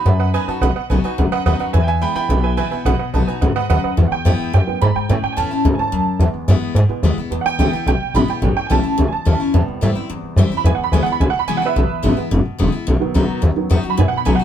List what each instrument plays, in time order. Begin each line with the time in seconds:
Already playing: upright piano B5
0.05 upright bass F#2, steel-string acoustic guitar F#2, honky-tonk piano B4 D#5 F#5
0.19 honky-tonk piano B4 D#5 F#5
0.34 steel-string acoustic guitar F#3 B3 D#4 F#4, honky-tonk piano B4 D#5 G#5
0.48 steel-string acoustic guitar D#4 F#4, honky-tonk piano B4 D#5 A5, muted upright bass stroke
0.61 upright bass B1, steel-string acoustic guitar B2, honky-tonk piano B4 D#5 F#5
0.76 honky-tonk piano B4 D#5 F#5, muted upright bass stroke
0.90 upright bass B1, steel-string acoustic guitar F#3 B3 D#4 F#4, honky-tonk piano B4 D#5 G#5
1.04 steel-string acoustic guitar D#4 F#4, honky-tonk piano B4 D#5 G#5, muted upright bass stroke
1.18 upright bass C#2, steel-string acoustic guitar F#2, honky-tonk piano B4 D#5 F#5
1.32 honky-tonk piano B4 D#5 F#5, muted upright bass stroke
1.46 upright bass D#2, steel-string acoustic guitar F#3 B3 D#4 F#4, honky-tonk piano B4 D#5 F#5
1.60 steel-string acoustic guitar D#4 F#4, honky-tonk piano B4 D#5 F#5, muted upright bass stroke
1.73 steel-string acoustic guitar E2, upright bass E2, honky-tonk piano B4 E5 G#5
1.83 honky-tonk piano B4 E5 G#5, upright piano G5
1.87 upright piano E5 G#5
2.01 steel-string acoustic guitar E3 G#3 B3 E4, honky-tonk piano B4 E5 G#5, upright piano G5 B5
2.15 steel-string acoustic guitar B3 E4, honky-tonk piano B4 E5 G#5, upright piano G5 B5, muted upright bass stroke
2.29 upright bass B1, steel-string acoustic guitar B2, honky-tonk piano B4 E5 G#5
2.43 honky-tonk piano B4 E5 G#5
2.57 steel-string acoustic guitar E3 G#3 B3 E4, honky-tonk piano B4 E5 G#5
2.71 steel-string acoustic guitar B3 E4, honky-tonk piano B4 E5 G#5, muted upright bass stroke
2.85 upright bass B1, steel-string acoustic guitar B2, honky-tonk piano B4 D#5 F#5
2.99 honky-tonk piano B4 D#5 F#5, muted upright bass stroke
3.14 upright bass B1, steel-string acoustic guitar F#3 B3 D#4 F#4, honky-tonk piano B4 D#5 A5
3.27 steel-string acoustic guitar D#4 F#4, honky-tonk piano B4 D#5 G#5
3.41 upright bass C#2, steel-string acoustic guitar G#2, honky-tonk piano B4 D#5 F#5
3.56 honky-tonk piano B4 D#5 F#5, muted upright bass stroke
3.70 upright bass D#2, steel-string acoustic guitar F#2, honky-tonk piano B4 D#5 F#5
3.84 honky-tonk piano B4 D#5 F#5, muted upright bass stroke
3.97 steel-string acoustic guitar E2, upright bass E2, honky-tonk piano E3 G#3 B3
4.08 honky-tonk piano F#5, muted upright bass stroke
4.12 honky-tonk piano G5
4.25 upright bass F2, steel-string acoustic guitar E3 G#3 B3 E4
4.39 muted upright bass stroke
4.53 steel-string acoustic guitar F#2, upright bass F#2, honky-tonk piano G5
4.67 honky-tonk piano E3 G#3 B3, muted upright bass stroke
4.82 steel-string acoustic guitar G#2, upright bass G#2, honky-tonk piano B5
4.96 honky-tonk piano G5, muted upright bass stroke
5.09 steel-string acoustic guitar A2, upright bass A2, honky-tonk piano E3 A3 C#4
5.23 honky-tonk piano G5, muted upright bass stroke
5.33 honky-tonk piano G#5
5.37 upright bass E2, steel-string acoustic guitar E3 A3 C#4 E4, honky-tonk piano A5
5.51 steel-string acoustic guitar C#4 E4, muted upright bass stroke
5.65 upright bass C#2, steel-string acoustic guitar G#2
5.75 honky-tonk piano E3 A3 C#4 G#5
5.79 honky-tonk piano A5, muted upright bass stroke
5.92 upright bass D#2, steel-string acoustic guitar F#2
6.07 muted upright bass stroke
6.19 upright bass E2, steel-string acoustic guitar E2, honky-tonk piano E3 G#3 B3
6.34 muted upright bass stroke
6.48 upright bass F#2, steel-string acoustic guitar E3 G#3 B3 E4
6.61 muted upright bass stroke
6.75 upright bass G#2, steel-string acoustic guitar B2
6.89 honky-tonk piano E3 G#3 B3, muted upright bass stroke
7.03 upright bass D#2, steel-string acoustic guitar E3 G#3 B3 E4
7.17 steel-string acoustic guitar B3 E4, muted upright bass stroke
7.30 upright bass E2, steel-string acoustic guitar E2, honky-tonk piano E3 G#3 B3
7.41 honky-tonk piano F#5, muted upright bass stroke
7.46 honky-tonk piano G5
7.59 upright bass C#2, steel-string acoustic guitar E3 G#3 B3 E4
7.73 steel-string acoustic guitar B3 E4, muted upright bass stroke
7.86 upright bass B1, steel-string acoustic guitar B2, honky-tonk piano G5
8.00 muted upright bass stroke
8.14 upright bass G#1, steel-string acoustic guitar E3 G#3 B3 E4, honky-tonk piano B5
8.28 steel-string acoustic guitar B3 E4, honky-tonk piano G5, muted upright bass stroke
8.42 upright bass A1, steel-string acoustic guitar A2, honky-tonk piano E3 A3 C#4
8.56 honky-tonk piano G5, muted upright bass stroke
8.66 upright bass B1, steel-string acoustic guitar E3 A3, honky-tonk piano G#5
8.71 steel-string acoustic guitar C#4 E4, honky-tonk piano A5
8.83 steel-string acoustic guitar C#4 E4
8.97 upright bass C#2, honky-tonk piano E3 A3 C#4
9.08 honky-tonk piano G#5
9.13 honky-tonk piano A5, muted upright bass stroke
9.25 upright bass D#2, steel-string acoustic guitar E3 A3 C#4 E4
9.40 steel-string acoustic guitar C#4 E4
9.53 upright bass E2, steel-string acoustic guitar A2, honky-tonk piano C3 G3 B3
9.68 muted upright bass stroke
9.81 upright bass A2, steel-string acoustic guitar E3 G3 C4 E4
9.95 steel-string acoustic guitar C4 E4, muted upright bass stroke
10.10 steel-string acoustic guitar E2, upright bass G2
10.23 muted upright bass stroke
10.36 upright bass F#2, steel-string acoustic guitar E3 G3 C4 E4
10.50 steel-string acoustic guitar C4 E4, muted upright bass stroke
10.57 honky-tonk piano B5
10.64 upright bass E2, steel-string acoustic guitar E2, honky-tonk piano E3 G#3 B3 G#5
10.75 honky-tonk piano F#5, muted upright bass stroke
10.84 honky-tonk piano B5
10.92 upright bass D2, steel-string acoustic guitar E3 G#3 B3 E4, honky-tonk piano G#5
11.03 steel-string acoustic guitar E4, honky-tonk piano F#5, muted upright bass stroke
11.08 steel-string acoustic guitar B3
11.12 honky-tonk piano B5
11.20 upright bass C#2, steel-string acoustic guitar B2, honky-tonk piano G#5
11.30 honky-tonk piano F#5, muted upright bass stroke
11.39 honky-tonk piano B5
11.47 upright bass C2, steel-string acoustic guitar E3 G#3 B3 E4, honky-tonk piano G#5
11.57 honky-tonk piano F#5
11.62 steel-string acoustic guitar B3 E4, honky-tonk piano B4, muted upright bass stroke
11.66 honky-tonk piano E5
11.76 upright bass B1, steel-string acoustic guitar E2
11.90 muted upright bass stroke
12.03 upright bass G#1, steel-string acoustic guitar E3 G#3 B3 E4
12.16 honky-tonk piano E3 G#3 B3, steel-string acoustic guitar B3 E4, muted upright bass stroke
12.31 upright bass F#1, steel-string acoustic guitar B2
12.45 muted upright bass stroke
12.59 upright bass E1, steel-string acoustic guitar E3 G#3 B3 E4
12.72 steel-string acoustic guitar B3 E4, muted upright bass stroke
12.87 upright bass B1, steel-string acoustic guitar B2
13.00 honky-tonk piano D#3 F#3 B3, muted upright bass stroke
13.14 upright bass C#2, steel-string acoustic guitar F#3 B3 D#4 F#4
13.29 muted upright bass stroke
13.42 upright bass D#2, steel-string acoustic guitar F#2
13.56 honky-tonk piano D#3 F#3 B3, muted upright bass stroke
13.70 upright bass E2, steel-string acoustic guitar F#3 B3 D#4 F#4
13.83 steel-string acoustic guitar D#4 F#4, muted upright bass stroke
13.90 honky-tonk piano B5
13.97 upright bass F#2, steel-string acoustic guitar B2, honky-tonk piano D#3 F#3 B3 G#5
14.08 honky-tonk piano F#5
14.12 muted upright bass stroke
14.17 honky-tonk piano B5
14.25 upright bass B1, steel-string acoustic guitar F#3 B3 D#4 F#4, honky-tonk piano G#5
14.35 steel-string acoustic guitar F#4, honky-tonk piano F#5
14.40 steel-string acoustic guitar D#4, muted upright bass stroke